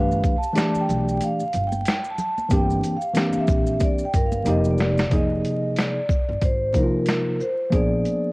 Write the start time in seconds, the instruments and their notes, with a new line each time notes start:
Already playing: upright bass G1, tine electric piano E3 A3 D4 G4 B4, vibraphone F5
0.11 maracas
0.24 kick, closed hi-hat, shaker, maracas
0.38 vibraphone A5
0.43 maracas
0.53 tine electric piano E3 A3 D4 G4 D5, closed hi-hat
0.57 snare, maracas
0.75 muted upright bass stroke, maracas
0.80 vibraphone G5
0.89 upright bass B1, low conga, shaker, maracas
1.08 maracas
1.21 vibraphone F5, closed hi-hat, high conga, maracas
1.40 maracas
1.53 upright bass G1, closed hi-hat, low conga, shaker, maracas
1.67 vibraphone G5
1.72 high conga, maracas
1.85 snare, closed hi-hat, maracas
2.04 maracas
2.10 vibraphone A5
2.18 low conga, maracas, shaker
2.38 high conga, maracas
2.49 upright bass G1, tine electric piano E3 A#3 C4 D4 G4, kick, closed hi-hat, maracas
2.54 vibraphone G5
2.70 maracas
2.84 closed hi-hat, high conga, shaker, maracas
2.97 vibraphone F5
3.01 maracas
3.14 tine electric piano E3 A#3 C4 D4 G4, snare, closed hi-hat, maracas
3.33 muted upright bass stroke, high conga, maracas
3.40 vibraphone E5
3.48 upright bass A#1, kick, low conga, maracas, shaker
3.67 maracas
3.80 vibraphone D5, kick, closed hi-hat, high conga, maracas
3.99 maracas
4.05 vibraphone G5
4.13 upright bass G1, vibraphone A#4, kick, closed hi-hat, low conga, maracas, shaker
4.26 vibraphone F5
4.32 high conga, maracas
4.44 upright bass F1, tine electric piano C3 F3 A#3 D#4, closed hi-hat, maracas
4.48 tine electric piano G4, vibraphone D#5
4.64 maracas
4.71 vibraphone D5
4.78 vibraphone D5, snare, low conga, maracas, shaker
4.98 snare, high conga, maracas
5.09 upright bass F1, tine electric piano C3 F3 A#3 D#4, kick, closed hi-hat
5.13 tine electric piano G#4, vibraphone D#5
5.45 closed hi-hat, shaker
5.76 vibraphone D5, snare, closed hi-hat
6.09 kick, shaker
6.29 upright bass G1
6.41 upright bass G#1, vibraphone C5, kick, closed hi-hat
6.73 tine electric piano C3 F3 A#3 D#4, kick, closed hi-hat, shaker
6.77 tine electric piano E4, vibraphone A#4
6.83 tine electric piano F4
7.06 snare, closed hi-hat
7.41 vibraphone C5, shaker
7.70 upright bass A#1, tine electric piano F3 A#3 B3 D4 G#4, kick, closed hi-hat
7.75 vibraphone D5
8.05 closed hi-hat, shaker